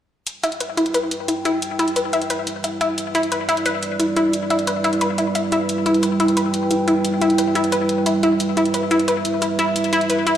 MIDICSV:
0, 0, Header, 1, 4, 480
1, 0, Start_track
1, 0, Key_signature, 1, "minor"
1, 0, Tempo, 338983
1, 378, Time_signature, 4, 2, 24, 8
1, 14690, End_track
2, 0, Start_track
2, 0, Title_t, "Analog synth pad"
2, 0, Program_c, 0, 89
2, 375, Note_on_c, 0, 55, 82
2, 375, Note_on_c, 0, 71, 79
2, 376, Note_on_c, 0, 64, 77
2, 376, Note_on_c, 0, 79, 93
2, 4202, Note_off_c, 0, 79, 0
2, 4219, Note_on_c, 0, 74, 93
2, 8043, Note_off_c, 0, 74, 0
2, 8060, Note_on_c, 0, 79, 90
2, 11884, Note_off_c, 0, 79, 0
2, 11899, Note_on_c, 0, 76, 96
2, 14690, Note_off_c, 0, 55, 0
2, 14690, Note_off_c, 0, 64, 0
2, 14690, Note_off_c, 0, 71, 0
2, 14690, Note_off_c, 0, 76, 0
2, 14690, End_track
3, 0, Start_track
3, 0, Title_t, "Synth arpeggio sound"
3, 0, Program_c, 1, 84
3, 617, Note_on_c, 1, 64, 106
3, 845, Note_off_c, 1, 64, 0
3, 857, Note_on_c, 1, 71, 75
3, 1086, Note_off_c, 1, 71, 0
3, 1096, Note_on_c, 1, 64, 103
3, 1262, Note_off_c, 1, 64, 0
3, 1336, Note_on_c, 1, 71, 88
3, 1502, Note_off_c, 1, 71, 0
3, 1816, Note_on_c, 1, 64, 74
3, 1982, Note_off_c, 1, 64, 0
3, 2057, Note_on_c, 1, 64, 100
3, 2285, Note_off_c, 1, 64, 0
3, 2537, Note_on_c, 1, 64, 105
3, 2765, Note_off_c, 1, 64, 0
3, 2777, Note_on_c, 1, 71, 74
3, 3005, Note_off_c, 1, 71, 0
3, 3017, Note_on_c, 1, 64, 101
3, 3183, Note_off_c, 1, 64, 0
3, 3258, Note_on_c, 1, 71, 85
3, 3423, Note_off_c, 1, 71, 0
3, 3738, Note_on_c, 1, 64, 74
3, 3903, Note_off_c, 1, 64, 0
3, 3977, Note_on_c, 1, 64, 100
3, 4205, Note_off_c, 1, 64, 0
3, 4457, Note_on_c, 1, 64, 99
3, 4685, Note_off_c, 1, 64, 0
3, 4697, Note_on_c, 1, 71, 75
3, 4925, Note_off_c, 1, 71, 0
3, 4937, Note_on_c, 1, 64, 103
3, 5102, Note_off_c, 1, 64, 0
3, 5177, Note_on_c, 1, 71, 89
3, 5343, Note_off_c, 1, 71, 0
3, 5657, Note_on_c, 1, 64, 73
3, 5823, Note_off_c, 1, 64, 0
3, 5897, Note_on_c, 1, 64, 103
3, 6125, Note_off_c, 1, 64, 0
3, 6378, Note_on_c, 1, 64, 100
3, 6606, Note_off_c, 1, 64, 0
3, 6618, Note_on_c, 1, 71, 77
3, 6846, Note_off_c, 1, 71, 0
3, 6858, Note_on_c, 1, 64, 103
3, 7023, Note_off_c, 1, 64, 0
3, 7097, Note_on_c, 1, 71, 87
3, 7263, Note_off_c, 1, 71, 0
3, 7337, Note_on_c, 1, 64, 79
3, 7503, Note_off_c, 1, 64, 0
3, 7578, Note_on_c, 1, 76, 73
3, 7806, Note_off_c, 1, 76, 0
3, 7818, Note_on_c, 1, 64, 103
3, 7983, Note_off_c, 1, 64, 0
3, 8298, Note_on_c, 1, 64, 101
3, 8526, Note_off_c, 1, 64, 0
3, 8537, Note_on_c, 1, 71, 72
3, 8765, Note_off_c, 1, 71, 0
3, 8777, Note_on_c, 1, 64, 105
3, 8943, Note_off_c, 1, 64, 0
3, 9017, Note_on_c, 1, 71, 90
3, 9183, Note_off_c, 1, 71, 0
3, 9497, Note_on_c, 1, 64, 76
3, 9663, Note_off_c, 1, 64, 0
3, 9737, Note_on_c, 1, 64, 99
3, 9965, Note_off_c, 1, 64, 0
3, 10217, Note_on_c, 1, 64, 105
3, 10445, Note_off_c, 1, 64, 0
3, 10456, Note_on_c, 1, 71, 70
3, 10685, Note_off_c, 1, 71, 0
3, 10695, Note_on_c, 1, 64, 100
3, 10862, Note_off_c, 1, 64, 0
3, 10935, Note_on_c, 1, 71, 83
3, 11101, Note_off_c, 1, 71, 0
3, 11416, Note_on_c, 1, 64, 78
3, 11582, Note_off_c, 1, 64, 0
3, 11657, Note_on_c, 1, 64, 106
3, 11885, Note_off_c, 1, 64, 0
3, 12135, Note_on_c, 1, 64, 106
3, 12365, Note_off_c, 1, 64, 0
3, 12376, Note_on_c, 1, 71, 74
3, 12605, Note_off_c, 1, 71, 0
3, 12616, Note_on_c, 1, 64, 101
3, 12782, Note_off_c, 1, 64, 0
3, 12856, Note_on_c, 1, 71, 89
3, 13022, Note_off_c, 1, 71, 0
3, 13335, Note_on_c, 1, 64, 73
3, 13502, Note_off_c, 1, 64, 0
3, 13576, Note_on_c, 1, 64, 101
3, 13805, Note_off_c, 1, 64, 0
3, 14057, Note_on_c, 1, 64, 105
3, 14285, Note_off_c, 1, 64, 0
3, 14297, Note_on_c, 1, 71, 72
3, 14525, Note_off_c, 1, 71, 0
3, 14537, Note_on_c, 1, 64, 108
3, 14690, Note_off_c, 1, 64, 0
3, 14690, End_track
4, 0, Start_track
4, 0, Title_t, "Drums"
4, 377, Note_on_c, 9, 42, 91
4, 518, Note_off_c, 9, 42, 0
4, 616, Note_on_c, 9, 42, 71
4, 736, Note_off_c, 9, 42, 0
4, 736, Note_on_c, 9, 42, 35
4, 856, Note_off_c, 9, 42, 0
4, 856, Note_on_c, 9, 42, 98
4, 997, Note_off_c, 9, 42, 0
4, 1097, Note_on_c, 9, 42, 67
4, 1216, Note_off_c, 9, 42, 0
4, 1216, Note_on_c, 9, 42, 38
4, 1336, Note_off_c, 9, 42, 0
4, 1336, Note_on_c, 9, 42, 91
4, 1478, Note_off_c, 9, 42, 0
4, 1577, Note_on_c, 9, 42, 66
4, 1718, Note_off_c, 9, 42, 0
4, 1817, Note_on_c, 9, 42, 96
4, 1958, Note_off_c, 9, 42, 0
4, 2057, Note_on_c, 9, 42, 64
4, 2198, Note_off_c, 9, 42, 0
4, 2297, Note_on_c, 9, 42, 88
4, 2438, Note_off_c, 9, 42, 0
4, 2537, Note_on_c, 9, 42, 67
4, 2657, Note_off_c, 9, 42, 0
4, 2657, Note_on_c, 9, 42, 37
4, 2777, Note_off_c, 9, 42, 0
4, 2777, Note_on_c, 9, 42, 91
4, 2919, Note_off_c, 9, 42, 0
4, 3017, Note_on_c, 9, 42, 67
4, 3137, Note_off_c, 9, 42, 0
4, 3137, Note_on_c, 9, 42, 37
4, 3257, Note_off_c, 9, 42, 0
4, 3257, Note_on_c, 9, 42, 91
4, 3399, Note_off_c, 9, 42, 0
4, 3497, Note_on_c, 9, 42, 68
4, 3639, Note_off_c, 9, 42, 0
4, 3738, Note_on_c, 9, 42, 91
4, 3880, Note_off_c, 9, 42, 0
4, 3978, Note_on_c, 9, 42, 58
4, 4119, Note_off_c, 9, 42, 0
4, 4217, Note_on_c, 9, 42, 81
4, 4359, Note_off_c, 9, 42, 0
4, 4458, Note_on_c, 9, 42, 64
4, 4577, Note_off_c, 9, 42, 0
4, 4577, Note_on_c, 9, 42, 33
4, 4697, Note_off_c, 9, 42, 0
4, 4697, Note_on_c, 9, 42, 90
4, 4839, Note_off_c, 9, 42, 0
4, 4938, Note_on_c, 9, 42, 66
4, 5058, Note_off_c, 9, 42, 0
4, 5058, Note_on_c, 9, 42, 36
4, 5177, Note_off_c, 9, 42, 0
4, 5177, Note_on_c, 9, 42, 86
4, 5319, Note_off_c, 9, 42, 0
4, 5417, Note_on_c, 9, 42, 62
4, 5559, Note_off_c, 9, 42, 0
4, 5658, Note_on_c, 9, 42, 89
4, 5799, Note_off_c, 9, 42, 0
4, 5897, Note_on_c, 9, 42, 61
4, 6039, Note_off_c, 9, 42, 0
4, 6137, Note_on_c, 9, 42, 83
4, 6279, Note_off_c, 9, 42, 0
4, 6377, Note_on_c, 9, 42, 63
4, 6497, Note_off_c, 9, 42, 0
4, 6497, Note_on_c, 9, 42, 34
4, 6617, Note_off_c, 9, 42, 0
4, 6617, Note_on_c, 9, 42, 88
4, 6758, Note_off_c, 9, 42, 0
4, 6857, Note_on_c, 9, 42, 59
4, 6977, Note_off_c, 9, 42, 0
4, 6977, Note_on_c, 9, 42, 33
4, 7096, Note_off_c, 9, 42, 0
4, 7096, Note_on_c, 9, 42, 82
4, 7238, Note_off_c, 9, 42, 0
4, 7337, Note_on_c, 9, 42, 61
4, 7478, Note_off_c, 9, 42, 0
4, 7577, Note_on_c, 9, 42, 83
4, 7718, Note_off_c, 9, 42, 0
4, 7817, Note_on_c, 9, 42, 59
4, 7959, Note_off_c, 9, 42, 0
4, 8057, Note_on_c, 9, 42, 81
4, 8199, Note_off_c, 9, 42, 0
4, 8297, Note_on_c, 9, 42, 62
4, 8417, Note_off_c, 9, 42, 0
4, 8417, Note_on_c, 9, 42, 36
4, 8537, Note_off_c, 9, 42, 0
4, 8537, Note_on_c, 9, 42, 88
4, 8678, Note_off_c, 9, 42, 0
4, 8777, Note_on_c, 9, 42, 63
4, 8897, Note_off_c, 9, 42, 0
4, 8897, Note_on_c, 9, 42, 34
4, 9017, Note_off_c, 9, 42, 0
4, 9017, Note_on_c, 9, 42, 83
4, 9159, Note_off_c, 9, 42, 0
4, 9257, Note_on_c, 9, 42, 64
4, 9399, Note_off_c, 9, 42, 0
4, 9496, Note_on_c, 9, 42, 87
4, 9638, Note_off_c, 9, 42, 0
4, 9737, Note_on_c, 9, 42, 58
4, 9879, Note_off_c, 9, 42, 0
4, 9976, Note_on_c, 9, 42, 84
4, 10118, Note_off_c, 9, 42, 0
4, 10216, Note_on_c, 9, 42, 67
4, 10336, Note_off_c, 9, 42, 0
4, 10336, Note_on_c, 9, 42, 36
4, 10455, Note_off_c, 9, 42, 0
4, 10455, Note_on_c, 9, 42, 90
4, 10597, Note_off_c, 9, 42, 0
4, 10695, Note_on_c, 9, 42, 64
4, 10816, Note_off_c, 9, 42, 0
4, 10816, Note_on_c, 9, 42, 37
4, 10935, Note_off_c, 9, 42, 0
4, 10935, Note_on_c, 9, 42, 90
4, 11077, Note_off_c, 9, 42, 0
4, 11174, Note_on_c, 9, 42, 62
4, 11316, Note_off_c, 9, 42, 0
4, 11414, Note_on_c, 9, 42, 92
4, 11556, Note_off_c, 9, 42, 0
4, 11655, Note_on_c, 9, 42, 60
4, 11797, Note_off_c, 9, 42, 0
4, 11895, Note_on_c, 9, 42, 91
4, 12036, Note_off_c, 9, 42, 0
4, 12135, Note_on_c, 9, 42, 68
4, 12255, Note_off_c, 9, 42, 0
4, 12255, Note_on_c, 9, 42, 38
4, 12375, Note_off_c, 9, 42, 0
4, 12375, Note_on_c, 9, 42, 94
4, 12517, Note_off_c, 9, 42, 0
4, 12616, Note_on_c, 9, 42, 68
4, 12737, Note_off_c, 9, 42, 0
4, 12737, Note_on_c, 9, 42, 38
4, 12857, Note_off_c, 9, 42, 0
4, 12857, Note_on_c, 9, 42, 91
4, 12998, Note_off_c, 9, 42, 0
4, 13097, Note_on_c, 9, 42, 68
4, 13239, Note_off_c, 9, 42, 0
4, 13337, Note_on_c, 9, 42, 96
4, 13479, Note_off_c, 9, 42, 0
4, 13577, Note_on_c, 9, 42, 66
4, 13719, Note_off_c, 9, 42, 0
4, 13817, Note_on_c, 9, 42, 94
4, 13937, Note_off_c, 9, 42, 0
4, 13937, Note_on_c, 9, 42, 39
4, 14057, Note_off_c, 9, 42, 0
4, 14057, Note_on_c, 9, 42, 70
4, 14177, Note_off_c, 9, 42, 0
4, 14177, Note_on_c, 9, 42, 37
4, 14297, Note_off_c, 9, 42, 0
4, 14297, Note_on_c, 9, 42, 96
4, 14438, Note_off_c, 9, 42, 0
4, 14537, Note_on_c, 9, 42, 69
4, 14678, Note_off_c, 9, 42, 0
4, 14690, End_track
0, 0, End_of_file